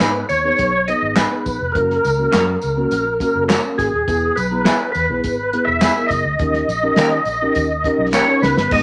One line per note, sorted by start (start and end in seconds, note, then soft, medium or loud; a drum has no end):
0.00 0.22 G#2 loud
0.00 0.10 B3 medium
0.00 0.20 B3 medium
0.00 0.10 D#4 medium
0.00 0.20 D#4 medium
0.00 0.21 G#4 medium
0.00 0.11 G#4 medium
0.00 0.21 B4 medium
0.00 0.26 B4 medium
0.00 0.11 B4 medium
0.00 snare loud
0.00 clap medium
0.00 closed hi-hat medium
0.00 tambourine medium
0.29 0.51 D#2 medium
0.29 0.89 C#5 loud
0.29 closed hi-hat medium
0.29 tambourine medium
0.44 0.70 B3 medium
0.44 0.70 D#4 medium
0.44 0.70 G#4 medium
0.44 0.71 B4 medium
0.58 0.91 B1 medium
0.58 kick medium
0.58 closed hi-hat medium
0.58 tambourine medium
0.88 1.14 B3 medium
0.88 1.14 D#4 medium
0.88 1.14 G#4 medium
0.88 1.14 B4 medium
0.88 1.18 D#5 loud
0.88 closed hi-hat medium
0.88 tambourine soft
1.02 1.24 G#1 medium
1.16 1.27 B3 medium
1.16 1.27 D#4 medium
1.16 1.27 G#4 medium
1.16 1.77 B4 medium
1.16 1.27 B4 medium
1.16 snare loud
1.16 clap loud
1.16 closed hi-hat medium
1.16 tambourine medium
1.30 1.57 B3 medium
1.30 1.57 D#4 medium
1.30 1.57 G#4 medium
1.30 1.57 B4 medium
1.46 1.57 A#1 medium
1.46 kick medium
1.46 closed hi-hat medium
1.46 tambourine medium
1.60 1.71 F1 medium
1.72 1.97 F#1 loud
1.72 2.01 A#3 medium
1.72 2.01 C#4 medium
1.72 2.01 F#4 medium
1.72 3.44 A#4 medium
1.72 2.01 A#4 medium
1.72 kick loud
1.72 closed hi-hat medium
1.90 snare soft
2.05 2.26 C#2 medium
2.05 closed hi-hat medium
2.05 tambourine medium
2.18 2.53 A#3 medium
2.18 2.53 C#4 medium
2.18 2.53 F#4 medium
2.18 2.53 A#4 medium
2.32 2.55 F#2 medium
2.32 2.43 A#3 medium
2.32 2.43 C#4 medium
2.32 2.43 F#4 medium
2.32 2.44 A#4 medium
2.32 snare loud
2.32 clap medium
2.32 closed hi-hat medium
2.32 tambourine medium
2.62 2.85 C#2 medium
2.62 closed hi-hat medium
2.62 tambourine medium
2.77 3.03 A#3 medium
2.77 3.03 C#4 medium
2.77 3.03 F#4 medium
2.77 3.03 A#4 loud
2.91 3.24 A#1 medium
2.91 closed hi-hat medium
2.91 tambourine medium
3.20 3.46 A#3 medium
3.20 3.46 C#4 medium
3.20 3.46 F#4 medium
3.20 3.46 A#4 loud
3.20 kick medium
3.20 closed hi-hat medium
3.20 tambourine soft
3.35 3.57 F#1 medium
3.48 3.59 A#3 medium
3.48 3.59 C#4 medium
3.48 3.60 F#4 medium
3.48 3.60 A#4 medium
3.48 snare loud
3.48 clap loud
3.48 closed hi-hat loud
3.48 tambourine medium
3.64 3.90 A#3 medium
3.64 3.90 C#4 medium
3.64 3.90 F#4 medium
3.64 3.90 A#4 medium
3.78 3.90 G#1 medium
3.78 4.38 G#4 medium
3.78 kick medium
3.78 snare soft
3.78 closed hi-hat medium
3.78 tambourine medium
3.93 4.04 D#1 medium
4.07 4.29 E1 medium
4.07 4.33 B3 medium
4.07 4.33 E4 medium
4.07 4.33 G#4 medium
4.07 4.34 B4 medium
4.07 kick loud
4.07 closed hi-hat medium
4.07 tambourine soft
4.36 4.69 B1 medium
4.36 4.91 B4 medium
4.36 closed hi-hat medium
4.36 tambourine medium
4.51 4.85 B3 medium
4.51 4.85 E4 medium
4.51 4.85 G#4 medium
4.51 4.85 A#5 medium
4.65 4.75 B3 medium
4.65 4.76 E4 medium
4.65 4.76 G#4 medium
4.65 4.76 B4 medium
4.65 snare medium
4.65 clap medium
4.65 closed hi-hat medium
4.65 tambourine medium
4.92 5.06 E2 medium
4.92 5.68 B4 medium
4.92 closed hi-hat medium
4.92 tambourine medium
5.10 5.25 B1 medium
5.10 5.35 B3 medium
5.10 5.35 E4 medium
5.10 5.35 G#4 medium
5.10 5.35 B4 medium
5.24 5.56 G#1 medium
5.24 kick loud
5.24 closed hi-hat medium
5.24 tambourine medium
5.53 5.78 B3 medium
5.53 5.79 E4 medium
5.53 5.79 G#4 medium
5.53 5.79 B4 medium
5.53 closed hi-hat medium
5.65 5.88 E1 medium
5.65 6.11 E5 loud
5.81 5.91 B3 medium
5.81 5.92 E4 medium
5.81 5.92 G#4 medium
5.81 5.92 B4 medium
5.81 snare loud
5.81 clap medium
5.81 closed hi-hat loud
5.81 tambourine loud
5.96 6.22 B3 medium
5.96 6.22 E4 medium
5.96 6.22 G#4 medium
5.96 6.22 A#4 medium
6.06 8.07 D#5 loud
6.06 kick medium
6.11 6.21 F#1 medium
6.11 snare soft
6.11 closed hi-hat medium
6.11 tambourine medium
6.24 6.35 D2 medium
6.39 6.61 D#2 loud
6.39 6.65 C#4 medium
6.39 6.65 D#4 medium
6.39 6.66 G4 medium
6.39 6.66 A#4 medium
6.39 kick loud
6.39 closed hi-hat medium
6.53 snare soft
6.68 6.90 A#1 loud
6.68 closed hi-hat medium
6.68 tambourine medium
6.83 7.17 C#4 medium
6.83 7.17 D#4 medium
6.83 7.17 G4 medium
6.83 7.17 A#4 medium
6.96 7.19 D#3 loud
6.96 7.07 A#3 medium
6.96 7.08 C#4 medium
6.96 7.08 G4 medium
6.96 7.08 A#4 medium
6.96 snare medium
6.96 clap medium
6.96 closed hi-hat medium
6.96 tambourine medium
7.25 7.47 A#1 medium
7.25 closed hi-hat medium
7.25 tambourine medium
7.42 7.67 C#4 medium
7.42 7.67 D#4 medium
7.42 7.67 G4 medium
7.42 7.67 A#4 loud
7.55 7.88 D#2 medium
7.55 kick medium
7.55 closed hi-hat medium
7.55 tambourine medium
7.84 8.10 C#4 medium
7.84 8.10 D#4 medium
7.84 8.10 G4 medium
7.84 8.10 A#4 loud
7.84 kick medium
7.84 closed hi-hat medium
7.98 8.20 B1 medium
8.13 8.23 A#3 medium
8.13 8.23 C#4 medium
8.13 8.41 C#4 medium
8.13 8.24 G4 medium
8.13 8.24 A#4 medium
8.13 8.43 C#5 loud
8.13 snare medium
8.13 clap medium
8.13 tambourine loud
8.28 8.53 C#4 medium
8.28 8.53 D#4 medium
8.28 8.53 G4 medium
8.28 8.54 A#4 medium
8.42 8.53 C#2 medium
8.42 8.69 B3 medium
8.42 8.72 B4 loud
8.42 snare medium
8.42 tambourine medium
8.56 8.67 G1 medium
8.56 snare medium
8.71 8.83 G#1 loud
8.71 8.83 G#3 medium
8.71 8.83 B3 medium
8.71 8.83 D#4 medium
8.71 8.83 D#4 loud
8.71 8.83 G#4 medium
8.71 8.83 B4 medium
8.71 8.83 D#5 loud
8.71 kick loud
8.71 crash loud